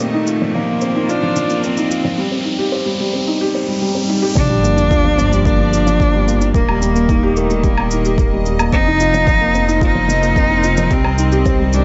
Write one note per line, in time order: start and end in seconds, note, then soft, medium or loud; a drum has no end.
0.00 2.15 F1 medium
0.00 2.19 A#2 medium
0.00 2.19 D#3 medium
0.00 0.56 A3 loud
0.00 0.13 C4 medium
0.00 0.87 G4 medium
0.00 0.88 D#5 medium
0.00 riser medium
0.00 shaker soft
0.14 0.27 D#4 medium
0.27 0.41 F4 medium
0.27 shaker medium
0.42 0.54 F3 medium
0.54 0.68 F3 medium
0.54 1.12 A#3 medium
0.54 2.18 C5 medium
0.69 0.82 A#3 medium
0.74 2.18 F4 medium
0.81 0.95 C4 medium
0.81 shaker medium
0.95 1.09 D#4 medium
1.09 1.65 D4 loud
1.09 1.22 F4 medium
1.09 shaker soft
1.23 1.35 F3 medium
1.36 1.50 F3 medium
1.36 shaker medium
1.50 1.63 A#3 medium
1.50 shaker soft
1.64 2.18 C4 loud
1.64 1.77 C4 medium
1.64 shaker soft
1.77 1.91 D#4 medium
1.77 shaker soft
1.91 2.04 F4 medium
1.91 shaker medium
2.05 2.18 F3 medium
2.18 2.31 G3 medium
2.32 2.45 C4 medium
2.45 2.58 D#4 medium
2.59 2.72 G4 loud
2.72 2.86 C5 medium
2.86 2.99 G3 medium
3.00 3.13 G3 medium
3.13 3.27 C4 medium
3.27 3.41 D#4 medium
3.27 swell medium
3.41 3.54 G4 loud
3.55 3.68 C5 medium
3.68 3.80 G3 medium
3.82 3.95 G3 medium
3.95 4.08 C4 medium
4.08 4.22 D#4 medium
4.08 high tom medium
4.22 4.36 G4 loud
4.22 mid tom medium
4.35 6.52 G1 medium
4.35 4.49 F3 medium
4.35 6.55 F3 medium
4.35 5.42 D4 loud
4.35 kick loud
4.35 sub drop medium
4.35 shaker soft
4.49 4.63 G3 medium
4.63 4.77 A#3 medium
4.63 9.61 A#3 medium
4.63 shaker medium
4.72 4.90 D4 medium
4.72 6.56 D5 medium
4.78 shaker soft
4.91 5.04 F4 medium
4.91 kick loud
4.91 shaker soft
5.05 5.17 F3 medium
5.18 5.31 F3 medium
5.18 shaker medium
5.32 5.45 G3 medium
5.32 shaker soft
5.45 5.59 A#3 medium
5.45 6.51 D4 loud
5.45 kick loud
5.45 shaker soft
5.59 5.72 D4 loud
5.73 5.86 F4 medium
5.73 shaker medium
5.87 5.99 F3 medium
5.87 shaker soft
6.00 6.13 F3 medium
6.00 kick loud
6.00 shaker soft
6.14 6.27 G3 medium
6.27 6.41 A#3 medium
6.27 shaker medium
6.41 6.54 D4 medium
6.41 shaker soft
6.54 8.70 D#1 medium
6.54 8.73 D#3 medium
6.54 7.38 A#3 loud
6.54 6.68 A#4 medium
6.54 kick loud
6.54 shaker soft
6.69 6.81 G3 medium
6.69 low woodblock medium
6.82 6.95 G3 medium
6.82 shaker medium
6.96 7.09 A#3 medium
6.96 shaker soft
7.09 7.23 D#4 medium
7.09 kick loud
7.09 shaker soft
7.23 7.36 G4 loud
7.37 7.66 A3 medium
7.37 7.50 A#4 medium
7.37 shaker medium
7.50 7.63 G3 medium
7.50 11.84 D#5 medium
7.50 shaker soft
7.64 7.77 G3 medium
7.64 8.46 A#3 medium
7.64 kick loud
7.64 shaker soft
7.78 7.91 A#3 medium
7.78 low woodblock medium
7.91 8.05 D#4 medium
7.91 shaker medium
8.05 8.18 G4 medium
8.05 shaker soft
8.18 8.32 A#4 medium
8.18 kick loud
8.18 shaker soft
8.33 8.46 G3 medium
8.46 8.59 G3 medium
8.46 shaker medium
8.59 8.73 A#3 medium
8.59 low woodblock medium
8.59 shaker soft
8.72 10.88 F1 medium
8.72 10.91 F3 medium
8.72 8.86 C4 medium
8.72 9.78 D#4 loud
8.72 kick loud
8.72 shaker soft
8.87 11.84 C4 medium
8.87 9.00 D#4 loud
9.00 9.13 F4 medium
9.00 shaker medium
9.14 9.26 F3 medium
9.14 shaker soft
9.27 9.41 F3 medium
9.27 kick loud
9.27 shaker soft
9.41 9.54 A#3 medium
9.54 9.68 C4 medium
9.54 shaker medium
9.68 9.81 D#4 loud
9.68 shaker soft
9.72 11.79 A#4 medium
9.81 10.94 D#4 loud
9.81 9.95 F4 medium
9.81 kick loud
9.81 shaker soft
9.95 10.07 F3 medium
10.08 10.22 F3 medium
10.08 shaker medium
10.22 10.36 A#3 medium
10.22 shaker soft
10.36 10.50 C4 medium
10.36 kick loud
10.36 shaker soft
10.50 10.63 D#4 loud
10.64 10.77 F4 medium
10.64 shaker medium
10.77 10.91 F3 medium
10.77 shaker soft
10.91 11.84 C2 medium
10.91 11.84 D#3 medium
10.91 11.04 G3 medium
10.91 11.76 C4 loud
10.91 kick loud
10.91 shaker soft
11.04 11.18 C4 medium
11.04 low woodblock medium
11.18 11.31 D#4 medium
11.18 shaker medium
11.32 11.45 G4 loud
11.32 shaker soft
11.46 11.59 C5 medium
11.46 kick loud
11.46 shaker soft
11.59 11.72 G3 medium
11.73 11.84 G3 medium
11.73 11.84 D4 loud
11.73 shaker medium